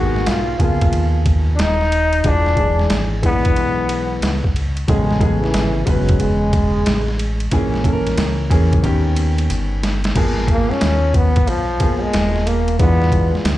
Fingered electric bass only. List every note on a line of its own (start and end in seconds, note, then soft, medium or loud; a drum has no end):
0.00 0.24 G#1 loud
0.27 0.58 B1 medium
0.60 0.91 C#2 medium
0.93 1.56 D#2 medium
1.59 2.22 D#1 medium
2.25 2.87 E1 loud
2.91 3.22 G#1 medium
3.23 3.55 A#1 medium
3.57 4.19 B1 medium
4.23 4.85 C#2 medium
4.89 5.51 A1 loud
5.54 5.86 G#1 medium
5.87 6.19 F#1 medium
6.21 6.83 E1 medium
6.85 7.48 A1 medium
7.52 8.15 A#1 loud
8.18 8.49 C#2 medium
8.51 8.82 E2 medium
8.84 9.47 D#2 loud
9.50 10.13 G1 medium
10.16 10.68 G#1 medium
10.71 muted fingered electric bass stroke soft
10.82 11.45 D#2 medium
11.47 12.10 B1 medium
12.14 12.76 D#1 medium
12.80 13.32 E2 loud
13.35 muted fingered electric bass stroke soft
13.45 13.58 D2 loud